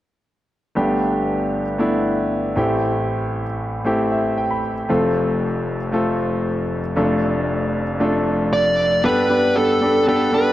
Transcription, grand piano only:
0.75 2.53 G1 medium
0.75 2.53 G2 medium
0.75 1.62 A3 medium
0.75 1.62 B3 medium
0.75 1.63 D4 medium
0.75 1.63 G4 medium
1.78 2.54 A3 medium
1.78 2.57 B3 medium
1.78 2.57 D4 medium
1.78 2.55 E4 medium
2.56 4.60 A1 medium
2.56 4.60 A2 medium
2.56 3.43 A3 medium
2.56 3.43 C4 medium
2.56 3.43 E4 medium
2.56 3.44 G4 medium
3.85 4.72 A3 medium
3.85 4.72 C4 medium
3.85 4.73 E4 medium
3.85 4.73 G4 medium
4.12 4.36 E5 soft
4.38 4.50 G5 medium
4.51 4.87 B5 medium
4.89 6.93 F1 medium
4.89 6.93 F2 medium
4.89 5.76 A3 medium
4.89 5.76 C4 medium
4.89 5.76 F4 medium
4.89 5.77 A4 medium
5.92 6.79 A3 medium
5.92 6.80 C4 medium
5.92 6.80 F4 medium
5.92 6.80 A4 medium
6.96 9.00 F1 medium
6.96 9.00 F2 medium
6.96 7.83 A3 medium
6.96 7.83 D4 medium
6.96 7.84 F4 medium
6.96 7.84 A4 medium
8.00 8.87 A3 medium
8.00 8.87 D4 medium
8.00 8.87 F4 medium
8.00 8.87 A4 medium
9.03 9.78 G2 soft
9.03 9.25 B3 medium
9.03 9.25 D4 medium
9.03 9.26 G4 medium
9.03 9.26 A4 medium
9.29 9.51 B3 medium
9.29 9.51 D4 medium
9.29 9.51 G4 medium
9.29 9.52 B4 medium
9.55 9.77 B3 medium
9.55 9.77 D4 medium
9.55 9.77 G4 medium
9.55 9.78 A4 medium
9.81 10.03 B3 medium
9.81 10.03 D4 medium
9.81 10.03 G4 medium
9.81 10.04 A4 medium
10.07 10.29 B3 medium
10.07 10.29 D4 medium
10.07 10.29 G4 medium
10.07 10.29 A4 medium
10.32 10.53 B3 medium
10.32 10.53 D4 medium
10.32 10.53 G4 soft
10.32 10.53 A4 medium

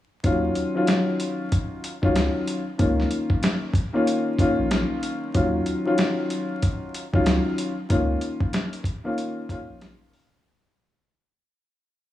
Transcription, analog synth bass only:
0.24 0.50 D#2 loud
2.03 2.29 C#2 medium
2.79 3.06 C#2 loud
4.59 4.85 A#1 medium
5.35 5.61 D#2 loud
7.14 7.40 C#2 loud
7.90 8.16 C#2 loud
9.70 9.96 A#1 medium

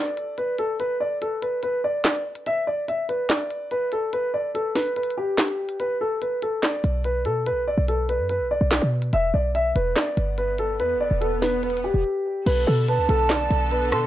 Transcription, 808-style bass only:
6.84 7.27 B1 loud
7.26 7.53 B2 loud
7.52 7.76 B1 loud
7.78 8.21 B1 loud
8.19 8.42 F#2 loud
8.40 8.60 B1 loud
8.61 8.81 B1 loud
8.82 9.12 B2 loud
9.13 9.33 E1 loud
9.34 9.74 B1 loud
9.76 9.96 E1 loud
10.17 10.81 G1 loud
10.80 10.97 E2 loud
10.95 11.10 G1 medium
11.11 11.91 E1 loud
11.94 12.04 E1 loud
12.46 12.66 B1 loud
12.67 13.00 B2 loud
12.98 13.08 D2 loud
13.09 13.49 B1 loud
13.50 13.94 B1 loud
13.92 14.07 B2 loud

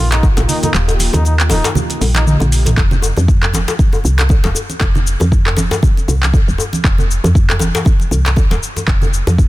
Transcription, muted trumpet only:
0.12 0.25 D#4 medium
0.49 0.58 D#4 medium
0.64 0.70 D#4 medium
1.15 1.21 D#4 medium
1.26 1.35 D#4 medium
1.50 1.66 D#4 medium
2.16 2.23 D#4 medium
2.27 2.36 D#4 medium

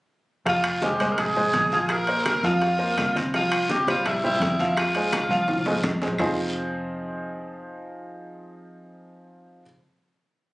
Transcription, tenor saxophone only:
0.49 0.81 F4 loud
0.84 1.14 G4 medium
1.12 1.20 A#4 medium
1.19 1.94 G#4 medium
1.92 2.47 A#4 loud
2.46 3.17 F4 loud
3.36 3.73 F4 medium
3.71 3.88 G4 medium
3.89 4.05 F4 medium
4.07 4.23 E4 medium
4.26 4.74 E4 loud
4.78 5.80 F4 medium

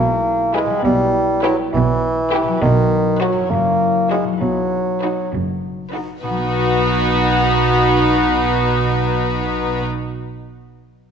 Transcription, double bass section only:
0.00 0.67 B1 medium
0.84 1.55 B1 medium
1.73 2.44 B1 medium
2.62 3.34 B1 medium
3.51 4.24 F#1 medium
4.43 5.16 B1 soft
5.34 6.07 F#1 soft
6.24 9.83 B1 soft

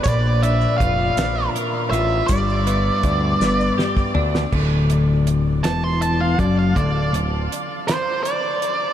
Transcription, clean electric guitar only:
0.00 0.43 D4 medium
0.07 1.92 A#2 medium
0.43 1.18 D4 medium
0.80 1.91 F4 medium
1.18 2.66 D4 medium
1.55 2.29 A#4 medium
1.92 2.29 F4 medium
2.29 4.15 G2 medium
2.67 3.40 B3 medium
3.04 4.13 D4 medium
3.41 4.52 B3 medium
3.78 4.52 G4 medium
4.14 4.52 D4 medium
4.52 5.63 D2 loud
5.64 6.37 E2 medium
6.38 6.74 F#2 loud
6.76 7.12 D2 loud
7.13 7.42 D2 medium

